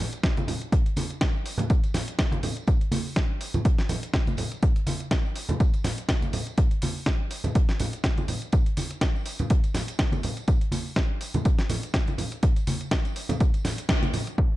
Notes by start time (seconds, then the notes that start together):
0.12 closed hi-hat, tambourine
0.23 kick, snare, closed hi-hat
0.37 closed hi-hat, tambourine, high conga
0.48 open hi-hat, tambourine, low conga
0.61 closed hi-hat, tambourine
0.72 kick, closed hi-hat, tambourine
0.86 closed hi-hat
0.96 open hi-hat, tambourine, high conga
1.10 closed hi-hat, tambourine
1.21 kick, snare, closed hi-hat, tambourine
1.34 tambourine
1.46 open hi-hat, tambourine
1.58 closed hi-hat, tambourine, high conga, low conga
1.70 kick, closed hi-hat, tambourine
1.84 closed hi-hat, tambourine
1.94 snare, open hi-hat, tambourine, low conga
2.08 closed hi-hat, tambourine
2.19 kick, snare, closed hi-hat, tambourine
2.32 closed hi-hat, tambourine, high conga
2.43 open hi-hat, tambourine, low conga
2.57 closed hi-hat, tambourine
2.67 kick, closed hi-hat, tambourine
2.81 closed hi-hat
2.91 open hi-hat, tambourine, high conga
3.06 tambourine
3.16 kick, snare, closed hi-hat
3.41 open hi-hat, tambourine
3.54 closed hi-hat, tambourine, high conga, low conga
3.65 kick, closed hi-hat, tambourine
3.78 snare, closed hi-hat
3.89 open hi-hat, tambourine, low conga
4.03 closed hi-hat, tambourine
4.14 kick, snare, closed hi-hat, tambourine
4.27 closed hi-hat, tambourine, high conga
4.37 open hi-hat, tambourine, low conga
4.52 closed hi-hat, tambourine
4.63 kick, closed hi-hat, tambourine
4.76 closed hi-hat
4.86 open hi-hat, tambourine, high conga
5.00 closed hi-hat, tambourine
5.11 kick, snare, closed hi-hat, tambourine
5.25 tambourine
5.36 open hi-hat, tambourine
5.49 closed hi-hat, tambourine, high conga, low conga
5.60 kick, closed hi-hat, tambourine
5.74 closed hi-hat, tambourine
5.84 snare, open hi-hat, tambourine, low conga
5.98 closed hi-hat, tambourine
6.09 kick, snare, closed hi-hat, tambourine
6.22 closed hi-hat, tambourine, high conga
6.33 open hi-hat, tambourine, low conga
6.47 closed hi-hat, tambourine
6.58 kick, closed hi-hat, tambourine
6.71 closed hi-hat
6.82 open hi-hat, tambourine, high conga
6.96 tambourine
7.06 kick, snare, closed hi-hat, tambourine
7.31 open hi-hat, tambourine
7.44 closed hi-hat, tambourine, high conga, low conga
7.55 kick, closed hi-hat, tambourine
7.69 snare, closed hi-hat
7.80 open hi-hat, tambourine, low conga
7.93 closed hi-hat, tambourine
8.04 kick, snare, closed hi-hat, tambourine
8.17 closed hi-hat, tambourine, high conga
8.28 open hi-hat, tambourine, low conga
8.42 closed hi-hat, tambourine
8.52 kick, closed hi-hat, tambourine
8.66 closed hi-hat
8.77 open hi-hat, tambourine, high conga
8.91 closed hi-hat, tambourine
9.01 kick, snare, closed hi-hat, tambourine
9.15 tambourine
9.25 open hi-hat, tambourine
9.39 closed hi-hat, tambourine, high conga, low conga
9.50 kick, closed hi-hat, tambourine
9.64 closed hi-hat, tambourine
9.74 snare, open hi-hat, tambourine, low conga
9.88 closed hi-hat, tambourine
9.99 kick, snare, closed hi-hat
10.12 closed hi-hat, tambourine, high conga
10.23 open hi-hat, tambourine, low conga
10.37 closed hi-hat, tambourine
10.48 kick, closed hi-hat, tambourine
10.61 closed hi-hat
10.72 open hi-hat, tambourine, high conga
10.86 tambourine
10.96 kick, snare, closed hi-hat, tambourine
11.21 open hi-hat, tambourine
11.34 closed hi-hat, tambourine, high conga, low conga
11.45 kick, closed hi-hat, tambourine
11.59 snare, closed hi-hat
11.70 open hi-hat, tambourine, low conga
11.83 closed hi-hat, tambourine
11.94 kick, snare, closed hi-hat, tambourine
12.07 closed hi-hat, tambourine, high conga
12.18 open hi-hat, tambourine, low conga
12.31 closed hi-hat, tambourine
12.43 kick, closed hi-hat, tambourine
12.56 closed hi-hat, tambourine
12.67 open hi-hat, tambourine, high conga
12.80 closed hi-hat, tambourine
12.91 kick, snare, closed hi-hat, tambourine
13.05 closed hi-hat, tambourine
13.16 open hi-hat, tambourine
13.29 closed hi-hat, tambourine, high conga, low conga
13.40 kick, closed hi-hat, tambourine
13.54 closed hi-hat, tambourine
13.65 snare, open hi-hat, tambourine, low conga
13.78 closed hi-hat, tambourine
13.89 kick, snare, closed hi-hat, tambourine
14.03 closed hi-hat, tambourine, high conga
14.13 open hi-hat, tambourine, low conga
14.27 closed hi-hat, tambourine
14.38 kick, crash
14.52 closed hi-hat